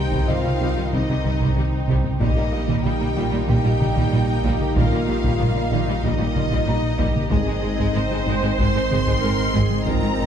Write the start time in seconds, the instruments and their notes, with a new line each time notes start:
Already playing: sub bass C2, trombone section D#3 C4, analog synth pad D#3 C4 C5 G5, viola section D#4, violin section D#4 G5, french horn section G4
0.11 analog synth bass C2, synth pluck C3, cello section C3, violin section G3, taiko
0.28 analog synth bass C2, double bass section C2, cello section C3, synth pluck D#3, violin section G3 F5, viola section F4, french horn section F4, felt piano D#5, taiko mid
0.44 analog synth bass C3, cello section C3, synth pluck G3, violin section G3
0.60 analog synth bass C2, double bass section C2, synth pluck C3, cello section C3, violin section G3, viola section D#4
0.76 analog synth bass C2, cello section C3, synth pluck D#3, violin section G3
0.92 analog synth bass C2, double bass section C2, synth pluck C3, cello section C3, violin section G3 D#5, french horn section D#4, taiko
1.08 analog synth bass C2, cello section C3, synth pluck D#3, violin section G3
1.24 analog synth bass C2, double bass section C2, cello section C3, violin section G3, synth pluck C4, taiko mid
1.40 analog synth bass C2, synth pluck C3, cello section C3, violin section G3, taiko
1.56 analog synth bass C2, double bass section C2, cello section C3, synth pluck D#3, violin section G3
1.71 analog synth bass C2
1.88 analog synth bass C2, double bass section C2, synth pluck C3, cello section C3, violin section G3, taiko
2.03 analog synth bass C3, taiko mid
2.20 double bass section A#1, sub bass A#1, analog synth bass A#2, cello section A#2, synth pluck D#3, trombone section D#3 A#3, violin section G3 D#4 D#5, analog synth pad G3 A#3 D#4 D#5, french horn section D#4, viola section G4, taiko
2.36 cello section A#2, violin section G3, analog synth bass A#3, synth pluck A#3
2.52 double bass section A#1, cello section A#2, violin section G3, analog synth bass A#3, synth pluck A#3, viola section G4
2.67 analog synth bass A#2, cello section A#2, synth pluck D#3, violin section G3, taiko
2.83 double bass section A#1, analog synth bass A#2, cello section A#2, synth pluck G3, violin section G3 G5, viola section D#4, french horn section G4, taiko mid
3.00 cello section A#2, violin section G3, synth pluck A#3, analog synth bass A#3
3.15 double bass section A#1, analog synth bass A#2, cello section A#2, synth pluck D#3, violin section G3, viola section F4
3.31 analog synth bass A#2, cello section A#2, violin section G3, synth pluck G3
3.47 double bass section A#1, analog synth bass A#2, cello section A#2, synth pluck D#3, violin section G3 G5, french horn section G4, viola section G4, felt piano G4 G5, taiko
3.64 analog synth bass A#2, cello section A#2, synth pluck G3, violin section G3
3.80 double bass section A#1, cello section A#2, analog synth bass A#2, violin section G3, synth pluck D#4, taiko mid
3.96 analog synth bass A#2, cello section A#2, synth pluck D#3, violin section G3, taiko
4.12 double bass section A#1, cello section A#2, analog synth bass A#2, synth pluck G3, violin section G3, viola section D#4
4.28 analog synth bass A#2
4.44 double bass section A#1, analog synth bass A#2, cello section A#2, synth pluck D#3, violin section G3, viola section G4, taiko
4.61 analog synth bass A#3, taiko mid
4.75 double bass section A#1, cello section A#2, analog synth bass A#2, synth pluck D#3, violin section G3 F5, french horn section F4, viola section A#4, taiko
4.92 cello section A#2, violin section G3, analog synth bass A#3, synth pluck A#3
5.08 double bass section A#1, cello section A#2, violin section G3, analog synth bass A#3, synth pluck A#3, viola section G4
5.23 cello section A#2, analog synth bass A#2, synth pluck D#3, violin section G3, taiko
5.40 double bass section A#1, cello section A#2, analog synth bass A#2, violin section G3, synth pluck G3, viola section F4, taiko mid
5.55 cello section A#2, violin section G3, analog synth bass A#3, synth pluck A#3
5.71 double bass section A#1, cello section A#2, analog synth bass A#2, synth pluck D#3, violin section G3, viola section D#4
5.87 cello section A#2, analog synth bass A#2, synth pluck G3, violin section G3
6.02 double bass section A#1, cello section A#2, analog synth bass A#2, synth pluck D#3, violin section G3 D#5, french horn section D#4, viola section G4, taiko
6.19 analog synth bass A#2, cello section A#2, violin section G3, synth pluck G3
6.35 double bass section A#1, cello section A#2, analog synth bass A#2, violin section G3, synth pluck D#4, viola section F4, taiko mid
6.51 cello section A#2, analog synth bass A#2, synth pluck D#3, violin section G3, taiko
6.66 double bass section A#1, analog synth bass A#2, cello section A#2, violin section G3, synth pluck G3, viola section D#4, felt piano A#5
6.83 analog synth bass A#2
6.98 double bass section A#1, analog synth bass A#2, cello section A#2, synth pluck D#3, violin section G3, viola section G4, taiko
7.15 analog synth bass A#3, taiko mid
7.30 sub bass G#1, double bass section G#1, cello section G#2, analog synth bass G#2, trombone section D#3 C4, analog synth pad G#3 C4 D#4 D#5, violin section G#3 C4 D#5, synth pluck G#3, french horn section D#4, viola section G#4, taiko
7.47 cello section G#2, analog synth bass G#3, violin section G#3, synth pluck D#4
7.62 double bass section G#1, cello section G#2, analog synth bass G#3, violin section G#3, synth pluck D#4
7.79 analog synth bass G#2, cello section G#2, violin section G#3, synth pluck G#3, taiko
7.95 double bass section G#1, analog synth bass G#2, cello section G#2, violin section G#3, synth pluck C4, viola section C5, taiko mid
8.10 cello section G#2, analog synth bass G#3, violin section G#3, synth pluck D#4
8.26 double bass section G#1, analog synth bass G#2, cello section G#2, synth pluck G#3, violin section G#3
8.42 cello section G#2, analog synth bass G#2, violin section G#3, synth pluck C4
8.58 double bass section G#1, cello section G#2, analog synth bass G#2, synth pluck G#3, violin section G#3 C6, french horn section C5, taiko
8.74 analog synth bass G#2, cello section G#2, violin section G#3, synth pluck C4
8.90 double bass section G#1, analog synth bass G#2, cello section G#2, violin section G#3, synth pluck G#4, taiko mid
9.06 analog synth bass G#2, cello section G#2, violin section G#3, synth pluck G#3, taiko
9.22 double bass section G#1, analog synth bass G#2, cello section G#2, violin section G#3, synth pluck C4, viola section A#4
9.38 analog synth bass G#2
9.54 double bass section G#1, analog synth bass G#2, cello section G#2, violin section G#3, synth pluck G#3, viola section G#4, taiko
9.70 analog synth bass G#3, taiko mid
9.85 double bass section G#1, analog synth bass G#2, cello section G#2, violin section G#3 A#5, synth pluck G#3, viola section F4, french horn section A#4, taiko
10.02 cello section G#2, analog synth bass G#3, violin section G#3, synth pluck D#4
10.17 double bass section G#1, cello section G#2, violin section G#3, analog synth bass G#3, viola section D#4, synth pluck D#4